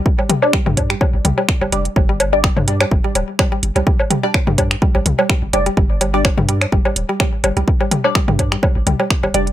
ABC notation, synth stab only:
X:1
M:4/4
L:1/16
Q:"Swing 16ths" 1/4=126
K:Gm
V:1 name="Synth stab"
z3 [G,Dd] z8 z2 [G,Dd] z | z3 [G,Dd] z12 | z3 [G,Dd] z8 z2 [G,Dd] z | z3 [G,Dd] z12 |
z3 [G,Dd] z8 z2 [G,Dd] z |]